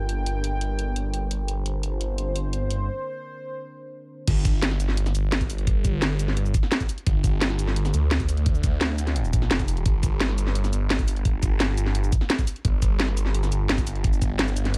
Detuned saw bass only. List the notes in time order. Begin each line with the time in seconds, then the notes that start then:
Already playing: G1
4.28 G1
5.15 G1
7.07 G1
7.94 D2
8.81 D2
9.33 A#1
9.51 F1
9.86 G1
10.73 G1
12.65 G1
13.52 G1
13.69 G1